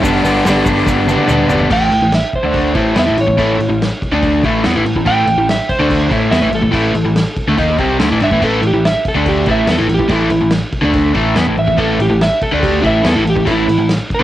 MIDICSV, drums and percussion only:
0, 0, Header, 1, 2, 480
1, 0, Start_track
1, 0, Tempo, 420168
1, 38, Time_signature, 4, 2, 24, 8
1, 16261, End_track
2, 0, Start_track
2, 0, Title_t, "Drums"
2, 41, Note_on_c, 9, 36, 121
2, 45, Note_on_c, 9, 46, 82
2, 52, Note_on_c, 9, 82, 117
2, 156, Note_off_c, 9, 36, 0
2, 159, Note_off_c, 9, 46, 0
2, 166, Note_off_c, 9, 82, 0
2, 287, Note_on_c, 9, 82, 85
2, 288, Note_on_c, 9, 46, 65
2, 401, Note_off_c, 9, 82, 0
2, 402, Note_off_c, 9, 46, 0
2, 514, Note_on_c, 9, 46, 81
2, 516, Note_on_c, 9, 38, 107
2, 531, Note_on_c, 9, 82, 110
2, 628, Note_off_c, 9, 46, 0
2, 630, Note_off_c, 9, 38, 0
2, 645, Note_off_c, 9, 82, 0
2, 744, Note_on_c, 9, 46, 64
2, 752, Note_on_c, 9, 36, 93
2, 757, Note_on_c, 9, 82, 82
2, 858, Note_off_c, 9, 46, 0
2, 866, Note_off_c, 9, 36, 0
2, 872, Note_off_c, 9, 82, 0
2, 981, Note_on_c, 9, 38, 71
2, 989, Note_on_c, 9, 36, 110
2, 1002, Note_on_c, 9, 82, 90
2, 1095, Note_off_c, 9, 38, 0
2, 1103, Note_off_c, 9, 36, 0
2, 1117, Note_off_c, 9, 82, 0
2, 1221, Note_on_c, 9, 48, 81
2, 1241, Note_on_c, 9, 82, 74
2, 1335, Note_off_c, 9, 48, 0
2, 1344, Note_on_c, 9, 48, 79
2, 1356, Note_off_c, 9, 82, 0
2, 1458, Note_off_c, 9, 48, 0
2, 1459, Note_on_c, 9, 47, 96
2, 1472, Note_on_c, 9, 82, 94
2, 1574, Note_off_c, 9, 47, 0
2, 1586, Note_off_c, 9, 82, 0
2, 1709, Note_on_c, 9, 43, 107
2, 1711, Note_on_c, 9, 82, 76
2, 1822, Note_off_c, 9, 43, 0
2, 1822, Note_on_c, 9, 43, 97
2, 1825, Note_off_c, 9, 82, 0
2, 1936, Note_off_c, 9, 43, 0
2, 1949, Note_on_c, 9, 36, 111
2, 1951, Note_on_c, 9, 49, 112
2, 1951, Note_on_c, 9, 57, 85
2, 2063, Note_off_c, 9, 36, 0
2, 2065, Note_off_c, 9, 49, 0
2, 2065, Note_off_c, 9, 57, 0
2, 2193, Note_on_c, 9, 57, 63
2, 2307, Note_off_c, 9, 57, 0
2, 2425, Note_on_c, 9, 57, 87
2, 2428, Note_on_c, 9, 38, 106
2, 2540, Note_off_c, 9, 57, 0
2, 2542, Note_off_c, 9, 38, 0
2, 2662, Note_on_c, 9, 57, 66
2, 2667, Note_on_c, 9, 36, 92
2, 2776, Note_off_c, 9, 57, 0
2, 2781, Note_off_c, 9, 36, 0
2, 2899, Note_on_c, 9, 57, 76
2, 2904, Note_on_c, 9, 36, 110
2, 3013, Note_off_c, 9, 57, 0
2, 3018, Note_off_c, 9, 36, 0
2, 3141, Note_on_c, 9, 57, 64
2, 3145, Note_on_c, 9, 36, 80
2, 3256, Note_off_c, 9, 57, 0
2, 3259, Note_off_c, 9, 36, 0
2, 3380, Note_on_c, 9, 57, 85
2, 3382, Note_on_c, 9, 38, 123
2, 3494, Note_off_c, 9, 57, 0
2, 3497, Note_off_c, 9, 38, 0
2, 3628, Note_on_c, 9, 57, 64
2, 3742, Note_off_c, 9, 57, 0
2, 3749, Note_on_c, 9, 36, 86
2, 3863, Note_off_c, 9, 36, 0
2, 3869, Note_on_c, 9, 36, 101
2, 3878, Note_on_c, 9, 57, 74
2, 3984, Note_off_c, 9, 36, 0
2, 3992, Note_off_c, 9, 57, 0
2, 4115, Note_on_c, 9, 57, 52
2, 4229, Note_off_c, 9, 57, 0
2, 4362, Note_on_c, 9, 57, 77
2, 4364, Note_on_c, 9, 38, 112
2, 4476, Note_off_c, 9, 57, 0
2, 4479, Note_off_c, 9, 38, 0
2, 4592, Note_on_c, 9, 36, 87
2, 4601, Note_on_c, 9, 57, 57
2, 4706, Note_off_c, 9, 36, 0
2, 4716, Note_off_c, 9, 57, 0
2, 4827, Note_on_c, 9, 36, 114
2, 4832, Note_on_c, 9, 57, 73
2, 4942, Note_off_c, 9, 36, 0
2, 4946, Note_off_c, 9, 57, 0
2, 5065, Note_on_c, 9, 36, 91
2, 5070, Note_on_c, 9, 57, 59
2, 5180, Note_off_c, 9, 36, 0
2, 5184, Note_off_c, 9, 57, 0
2, 5300, Note_on_c, 9, 57, 84
2, 5302, Note_on_c, 9, 38, 118
2, 5414, Note_off_c, 9, 57, 0
2, 5416, Note_off_c, 9, 38, 0
2, 5552, Note_on_c, 9, 57, 65
2, 5665, Note_on_c, 9, 36, 77
2, 5666, Note_off_c, 9, 57, 0
2, 5779, Note_off_c, 9, 36, 0
2, 5780, Note_on_c, 9, 57, 84
2, 5785, Note_on_c, 9, 36, 95
2, 5894, Note_off_c, 9, 57, 0
2, 5899, Note_off_c, 9, 36, 0
2, 6024, Note_on_c, 9, 57, 62
2, 6138, Note_off_c, 9, 57, 0
2, 6273, Note_on_c, 9, 57, 83
2, 6276, Note_on_c, 9, 38, 111
2, 6388, Note_off_c, 9, 57, 0
2, 6390, Note_off_c, 9, 38, 0
2, 6504, Note_on_c, 9, 36, 87
2, 6505, Note_on_c, 9, 57, 65
2, 6618, Note_off_c, 9, 36, 0
2, 6619, Note_off_c, 9, 57, 0
2, 6743, Note_on_c, 9, 36, 105
2, 6747, Note_on_c, 9, 57, 85
2, 6857, Note_off_c, 9, 36, 0
2, 6861, Note_off_c, 9, 57, 0
2, 6981, Note_on_c, 9, 57, 64
2, 6982, Note_on_c, 9, 36, 83
2, 7096, Note_off_c, 9, 36, 0
2, 7096, Note_off_c, 9, 57, 0
2, 7225, Note_on_c, 9, 57, 86
2, 7228, Note_on_c, 9, 38, 122
2, 7340, Note_off_c, 9, 57, 0
2, 7342, Note_off_c, 9, 38, 0
2, 7457, Note_on_c, 9, 57, 61
2, 7572, Note_off_c, 9, 57, 0
2, 7577, Note_on_c, 9, 36, 77
2, 7692, Note_off_c, 9, 36, 0
2, 7697, Note_on_c, 9, 36, 95
2, 7699, Note_on_c, 9, 57, 85
2, 7811, Note_off_c, 9, 36, 0
2, 7813, Note_off_c, 9, 57, 0
2, 7936, Note_on_c, 9, 57, 60
2, 8051, Note_off_c, 9, 57, 0
2, 8178, Note_on_c, 9, 57, 76
2, 8180, Note_on_c, 9, 38, 102
2, 8292, Note_off_c, 9, 57, 0
2, 8295, Note_off_c, 9, 38, 0
2, 8415, Note_on_c, 9, 36, 86
2, 8416, Note_on_c, 9, 57, 58
2, 8529, Note_off_c, 9, 36, 0
2, 8530, Note_off_c, 9, 57, 0
2, 8655, Note_on_c, 9, 36, 110
2, 8660, Note_on_c, 9, 57, 72
2, 8770, Note_off_c, 9, 36, 0
2, 8774, Note_off_c, 9, 57, 0
2, 8889, Note_on_c, 9, 57, 58
2, 8894, Note_on_c, 9, 36, 83
2, 9003, Note_off_c, 9, 57, 0
2, 9008, Note_off_c, 9, 36, 0
2, 9133, Note_on_c, 9, 57, 83
2, 9135, Note_on_c, 9, 38, 115
2, 9247, Note_off_c, 9, 57, 0
2, 9249, Note_off_c, 9, 38, 0
2, 9367, Note_on_c, 9, 57, 60
2, 9482, Note_off_c, 9, 57, 0
2, 9495, Note_on_c, 9, 36, 81
2, 9610, Note_off_c, 9, 36, 0
2, 9616, Note_on_c, 9, 36, 101
2, 9618, Note_on_c, 9, 57, 84
2, 9731, Note_off_c, 9, 36, 0
2, 9732, Note_off_c, 9, 57, 0
2, 9855, Note_on_c, 9, 57, 62
2, 9970, Note_off_c, 9, 57, 0
2, 10109, Note_on_c, 9, 57, 78
2, 10111, Note_on_c, 9, 38, 108
2, 10223, Note_off_c, 9, 57, 0
2, 10226, Note_off_c, 9, 38, 0
2, 10337, Note_on_c, 9, 57, 62
2, 10338, Note_on_c, 9, 36, 85
2, 10451, Note_off_c, 9, 57, 0
2, 10452, Note_off_c, 9, 36, 0
2, 10576, Note_on_c, 9, 36, 111
2, 10576, Note_on_c, 9, 57, 85
2, 10690, Note_off_c, 9, 57, 0
2, 10691, Note_off_c, 9, 36, 0
2, 10803, Note_on_c, 9, 57, 66
2, 10815, Note_on_c, 9, 36, 92
2, 10917, Note_off_c, 9, 57, 0
2, 10929, Note_off_c, 9, 36, 0
2, 11047, Note_on_c, 9, 57, 92
2, 11049, Note_on_c, 9, 38, 119
2, 11161, Note_off_c, 9, 57, 0
2, 11163, Note_off_c, 9, 38, 0
2, 11298, Note_on_c, 9, 57, 67
2, 11413, Note_off_c, 9, 57, 0
2, 11417, Note_on_c, 9, 36, 80
2, 11526, Note_on_c, 9, 57, 87
2, 11531, Note_off_c, 9, 36, 0
2, 11534, Note_on_c, 9, 36, 100
2, 11641, Note_off_c, 9, 57, 0
2, 11648, Note_off_c, 9, 36, 0
2, 11764, Note_on_c, 9, 57, 61
2, 11878, Note_off_c, 9, 57, 0
2, 12002, Note_on_c, 9, 57, 77
2, 12004, Note_on_c, 9, 38, 114
2, 12116, Note_off_c, 9, 57, 0
2, 12119, Note_off_c, 9, 38, 0
2, 12253, Note_on_c, 9, 57, 60
2, 12254, Note_on_c, 9, 36, 86
2, 12367, Note_off_c, 9, 57, 0
2, 12368, Note_off_c, 9, 36, 0
2, 12492, Note_on_c, 9, 57, 76
2, 12495, Note_on_c, 9, 36, 112
2, 12607, Note_off_c, 9, 57, 0
2, 12609, Note_off_c, 9, 36, 0
2, 12734, Note_on_c, 9, 57, 57
2, 12736, Note_on_c, 9, 36, 89
2, 12849, Note_off_c, 9, 57, 0
2, 12850, Note_off_c, 9, 36, 0
2, 12975, Note_on_c, 9, 57, 81
2, 12978, Note_on_c, 9, 38, 123
2, 13090, Note_off_c, 9, 57, 0
2, 13092, Note_off_c, 9, 38, 0
2, 13221, Note_on_c, 9, 57, 60
2, 13335, Note_off_c, 9, 57, 0
2, 13342, Note_on_c, 9, 36, 82
2, 13456, Note_off_c, 9, 36, 0
2, 13460, Note_on_c, 9, 57, 75
2, 13461, Note_on_c, 9, 36, 94
2, 13575, Note_off_c, 9, 36, 0
2, 13575, Note_off_c, 9, 57, 0
2, 13706, Note_on_c, 9, 57, 57
2, 13820, Note_off_c, 9, 57, 0
2, 13952, Note_on_c, 9, 57, 78
2, 13954, Note_on_c, 9, 38, 106
2, 14066, Note_off_c, 9, 57, 0
2, 14069, Note_off_c, 9, 38, 0
2, 14185, Note_on_c, 9, 57, 61
2, 14186, Note_on_c, 9, 36, 85
2, 14300, Note_off_c, 9, 36, 0
2, 14300, Note_off_c, 9, 57, 0
2, 14427, Note_on_c, 9, 36, 105
2, 14436, Note_on_c, 9, 57, 84
2, 14542, Note_off_c, 9, 36, 0
2, 14550, Note_off_c, 9, 57, 0
2, 14666, Note_on_c, 9, 36, 85
2, 14671, Note_on_c, 9, 57, 59
2, 14780, Note_off_c, 9, 36, 0
2, 14785, Note_off_c, 9, 57, 0
2, 14902, Note_on_c, 9, 57, 86
2, 14904, Note_on_c, 9, 38, 124
2, 15016, Note_off_c, 9, 57, 0
2, 15018, Note_off_c, 9, 38, 0
2, 15160, Note_on_c, 9, 57, 64
2, 15268, Note_on_c, 9, 36, 85
2, 15274, Note_off_c, 9, 57, 0
2, 15383, Note_off_c, 9, 36, 0
2, 15385, Note_on_c, 9, 57, 86
2, 15388, Note_on_c, 9, 36, 100
2, 15499, Note_off_c, 9, 57, 0
2, 15502, Note_off_c, 9, 36, 0
2, 15638, Note_on_c, 9, 57, 60
2, 15753, Note_off_c, 9, 57, 0
2, 15868, Note_on_c, 9, 57, 80
2, 15870, Note_on_c, 9, 38, 106
2, 15982, Note_off_c, 9, 57, 0
2, 15985, Note_off_c, 9, 38, 0
2, 16111, Note_on_c, 9, 36, 82
2, 16117, Note_on_c, 9, 57, 62
2, 16225, Note_off_c, 9, 36, 0
2, 16231, Note_off_c, 9, 57, 0
2, 16261, End_track
0, 0, End_of_file